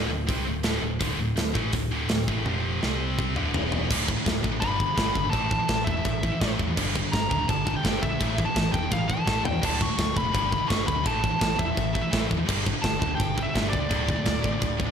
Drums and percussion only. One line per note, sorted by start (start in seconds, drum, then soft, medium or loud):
0.29 kick loud
0.29 open hi-hat medium
0.63 snare loud
0.63 open hi-hat medium
1.01 kick loud
1.01 open hi-hat medium
1.37 snare loud
1.37 open hi-hat medium
1.55 kick loud
1.73 kick medium
1.73 open hi-hat medium
2.09 snare loud
2.09 open hi-hat medium
2.28 kick loud
2.46 high tom medium
2.83 snare medium
3.19 kick medium
3.36 mid tom medium
3.54 floor tom loud
3.72 floor tom medium
3.91 kick loud
3.91 crash loud
3.91 china medium
4.08 kick medium
4.26 kick loud
4.26 snare loud
4.26 china medium
4.44 kick medium
4.62 kick loud
4.62 china medium
4.80 kick medium
4.98 kick loud
4.98 snare loud
4.98 china medium
5.15 kick medium
5.33 kick loud
5.33 china medium
5.51 kick medium
5.68 kick loud
5.68 snare loud
5.68 china medium
5.87 kick medium
6.05 kick loud
6.05 china medium
6.23 kick medium
6.41 kick loud
6.41 snare loud
6.41 china medium
6.59 kick medium
6.77 kick loud
6.77 crash loud
6.77 china medium
6.96 kick medium
7.13 kick loud
7.13 snare loud
7.13 china medium
7.31 kick medium
7.49 kick loud
7.49 china medium
7.67 kick medium
7.85 kick loud
7.85 snare loud
7.85 china medium
8.03 kick medium
8.21 kick loud
8.21 china medium
8.38 kick medium
8.56 kick loud
8.56 snare loud
8.56 china medium
8.74 kick loud
8.91 kick loud
8.91 china medium
9.10 kick medium
9.27 kick loud
9.27 snare medium
9.45 floor tom loud
9.63 kick loud
9.63 crash loud
9.63 china medium
9.81 kick medium
9.98 kick loud
9.98 snare loud
9.98 china medium
10.17 kick medium
10.35 kick loud
10.35 china medium
10.52 kick medium
10.70 kick loud
10.70 snare loud
10.70 china medium
10.88 kick medium
11.06 kick loud
11.06 china medium
11.24 kick medium
11.41 kick loud
11.41 snare loud
11.41 china medium
11.59 kick medium
11.77 kick loud
11.77 china medium
11.95 kick medium
12.13 kick loud
12.13 snare loud
12.13 china medium
12.31 kick medium
12.49 kick loud
12.49 crash loud
12.49 china medium
12.66 kick medium
12.84 kick loud
12.84 snare loud
12.84 china medium
13.02 kick medium
13.20 kick loud
13.20 china medium
13.38 kick medium
13.56 kick loud
13.56 snare loud
13.56 china medium
13.73 kick medium
13.91 kick loud
13.91 china medium
14.09 kick medium
14.25 kick loud
14.25 snare loud
14.25 china medium
14.44 kick medium
14.61 kick loud
14.61 china medium
14.80 kick medium